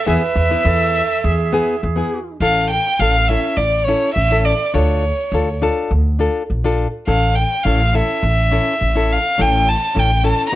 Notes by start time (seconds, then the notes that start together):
0.07 E2 B3 E4 G#4 B4 E5
0.36 E2, muted nylon-string guitar stroke
0.50 B3 E4 B4
0.65 E2 A4
1.24 E2 G#4
1.53 B3 E4 G#4
1.83 E2 G#4
1.96 B3 E4 G#4
2.40 A1 C#4 E4 A4 F5
2.71 G5
2.99 A1 C#4 E4 A4 F5
3.28 C#4 E4 A4 E5
3.57 A1 D5
3.85 C#4 E4 C#5
3.89 A4
4.14 A1 E5
4.31 C#4 E4 A4
4.45 D5
4.74 D2 D4 F4 A4 C#5
5.32 D2 D4 F4 A4
5.62 D4 F4 A4
5.91 D2
6.19 D4 F4 A4
6.50 A#1
6.64 D4 F4 A4
7.07 A1 C#4 E4 A4 F5
7.35 G5
7.64 A1 C#4 E4 A4 F5
7.94 C#4 E4 A4 E5
8.23 A1
8.52 C#4 E4 A4
8.81 A1
8.95 C#4 E4 A4
9.12 F5
9.38 A1 C#4 E4 A4 G5
9.69 A5
9.95 A1 C#4 E4 A4 G5
10.23 C#4 E4 A4 A5
10.49 B3 A#5